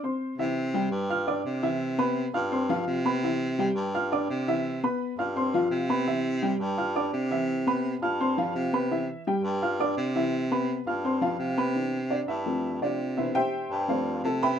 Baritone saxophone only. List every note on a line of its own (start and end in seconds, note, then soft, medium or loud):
0.38 0.88 C3 medium
0.91 1.41 G2 medium
1.45 2.28 C3 medium
2.34 2.83 G2 loud
2.87 3.70 C3 loud
3.76 4.26 G2 medium
4.29 4.85 C3 medium
5.18 5.68 G2 medium
5.71 6.54 C3 loud
6.60 7.10 G2 loud
7.13 7.96 C3 loud
8.02 8.52 G2 medium
8.55 9.11 C3 medium
9.44 9.93 G2 loud
9.97 10.80 C3 loud
10.86 11.36 G2 medium
11.39 12.23 C3 loud
12.28 12.78 G2 medium
12.82 13.38 C3 medium
13.71 14.21 G2 medium
14.24 14.59 C3 loud